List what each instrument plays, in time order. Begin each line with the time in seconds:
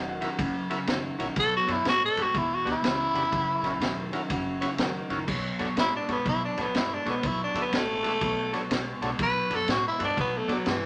Already playing: upright bass E1, clean electric guitar F#2 D#3
0.08 upright piano F#4
0.21 clean electric guitar F#2 D#3, tonewheel organ E4 F#4 A#4 E5, snare, ride
0.38 upright bass F#1, clean electric guitar F#2 C#3, kick, ride
0.70 clean electric guitar F#2 C#3, tonewheel organ E4 F#4 A#4 E5, snare, ride
0.87 upright bass F#1, clean electric guitar F#2 D#3, snare, ride
1.19 upright bass A#1, clean electric guitar F#2 D#3, tonewheel organ E4 F#4 A#4 C#5, snare, ride
1.36 upright bass B1, clean electric guitar B2 F#3, tenor saxophone A4, kick, ride
1.57 tenor saxophone F#4
1.67 upright bass F#2, clean electric guitar B2 F#3, tonewheel organ D4 F#4 A4 C#5, snare, ride
1.72 tenor saxophone E4
1.85 upright bass A2, clean electric guitar B2 G#3, tenor saxophone F#4, snare, ride
2.05 tenor saxophone A4
2.16 upright bass G2, clean electric guitar B2 G#3, tonewheel organ D4 F#4 A4 B4, snare, ride
2.22 tenor saxophone F#4
2.34 upright bass E1, clean electric guitar E2 B2, tenor saxophone E4, kick, ride
2.54 tenor saxophone F#4
2.65 upright bass D2, clean electric guitar E2 B2, tonewheel organ D4 F#4 G4 B4, snare, ride
2.71 tenor saxophone E4
2.83 upright bass C#2, clean electric guitar E2 C#3, snare, ride
3.14 upright bass F1, clean electric guitar E2 C#3, tonewheel organ D4 F#4 G4 B4, snare, ride
3.32 upright bass F#1, clean electric guitar F#2 C#3, kick, ride
3.62 upright bass A#1, clean electric guitar F#2 C#3, tonewheel organ C#4 E4 F#4 A#4, snare, ride
3.66 upright piano E5
3.80 upright bass E1, clean electric guitar F#2 D#3, snare, ride
4.12 clean electric guitar F#2 D#3, tonewheel organ C#4 E4 F#4 A#4, snare, ride
4.30 upright bass F#1, clean electric guitar F#2 C#3, upright piano F#4, kick, snare, ride
4.61 clean electric guitar F#2 C#3, tonewheel organ C#4 E4 F#4 C#5, upright piano E4, snare, ride
4.77 upright bass F#1, clean electric guitar F#2 D#3, upright piano F#4 A#4, snare, ride
5.10 upright bass F#1, clean electric guitar F#2 D#3, tonewheel organ C#4 E4 F#4 A#4, snare, ride
5.27 upright bass B1, clean electric guitar B2 F#3, kick, crash
5.59 upright bass F#2, clean electric guitar B2 F#3, tonewheel organ D4 F#4 A4 C#5, snare, ride
5.76 upright bass A2, clean electric guitar B2 G#3, tenor saxophone E4, snare, ride
5.96 tenor saxophone D4
6.08 upright bass G2, clean electric guitar B2 G#3, tonewheel organ D4 F#4 A4 C#5, snare, ride
6.12 tenor saxophone B3
6.25 clean electric guitar B2 F#3, upright bass B2, kick, snare, ride
6.29 tenor saxophone E4
6.45 tenor saxophone D4
6.57 upright bass A2, clean electric guitar B2 F#3, tonewheel organ D4 F#4 A4 C#5, snare, ride
6.62 tenor saxophone B3
6.74 upright bass G2, clean electric guitar B2 G#3, tenor saxophone E4, snare, ride
6.94 tenor saxophone D4
7.06 upright bass B2, clean electric guitar B2 G#3, tonewheel organ D4 F#4 A4 C#5, snare, ride
7.10 tenor saxophone B3
7.23 upright bass B1, clean electric guitar B2 F#3, tenor saxophone E4, kick, ride
7.44 tenor saxophone D4
7.54 upright bass D2, clean electric guitar B2 F#3, tonewheel organ D4 F#4 A4 E5, snare, ride
7.62 tenor saxophone B3
7.72 upright bass A1, clean electric guitar B2 G#3, snare, ride
7.78 tenor saxophone A3
8.03 clean electric guitar B2 G#3, tonewheel organ D4 F#4 A4 E5, snare, ride
8.21 upright bass B1, clean electric guitar B2 F#3, kick, ride
8.53 clean electric guitar B2 F#3, tonewheel organ D4 F#4 A4 C#5, snare, ride
8.70 upright bass B1, clean electric guitar B2 G#3, snare, ride
9.01 upright bass B1, clean electric guitar B2 G#3, tonewheel organ D4 F#4 A4 C#5, snare, ride
9.19 upright bass B1, clean electric guitar B2 F#3, tenor saxophone B4, kick, ride
9.50 upright bass F#2, clean electric guitar B2 F#3, tonewheel organ D4 F#4 A4 B4, snare, ride
9.55 tenor saxophone A4
9.68 upright bass A2, clean electric guitar B2 G#3, tenor saxophone F#4, snare, ride
9.88 tenor saxophone E4
9.99 upright bass G2, clean electric guitar B2 G#3, tonewheel organ D4 F#4 A4 B4, snare, ride
10.04 tenor saxophone D4
10.17 clean electric guitar B2 F#3, upright bass B2, tenor saxophone B3, kick, ride
10.38 tenor saxophone A3
10.48 upright bass A2, clean electric guitar B2 F#3, tonewheel organ D4 F#4 A4 D5, snare, ride
10.53 tenor saxophone F#3
10.66 upright bass G2, clean electric guitar B2 G#3, tenor saxophone E3, snare, ride